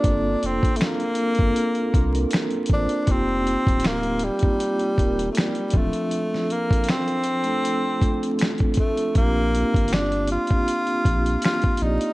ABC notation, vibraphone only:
X:1
M:4/4
L:1/16
Q:"Swing 16ths" 1/4=79
K:Bb
V:1 name="Vibraphone"
[B,CDFA]6 z [B,CDFA]3 [B,CDFB]3 z [B,CDFc]2 | [B,CEFG]6 z [B,CEFG]3 [B,CEFB]3 z [F,CDFA]2- | [F,CDFA]4- [F,CDFA] z2 [A,CDFA]3 [A,CDFA]3 z [A,CDFA]2 | [B,CDFG]6 z [B,CDFG]3 [B,CDFG]3 z [B,CFGd]2 |]